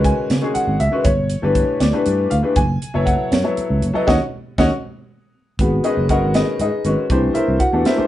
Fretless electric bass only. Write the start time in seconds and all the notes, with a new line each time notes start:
Already playing: C#2
0.30 C#3
0.55 muted fretless electric bass stroke
0.67 G#1
0.80 C#2
1.05 G1
1.43 G1
1.80 D2
1.93 muted fretless electric bass stroke
2.07 G2
2.32 D2
2.57 F#1
2.95 F#1
3.32 F#2
3.58 muted fretless electric bass stroke
3.70 C#2
3.82 F#1
3.95 muted fretless electric bass stroke
4.08 D#2
4.58 D#2
5.59 G#1
5.97 F#1
6.23 G#1
6.60 G#2
6.85 G#1
7.10 C2
7.35 muted fretless electric bass stroke
7.48 C2
7.73 E2
7.99 muted fretless electric bass stroke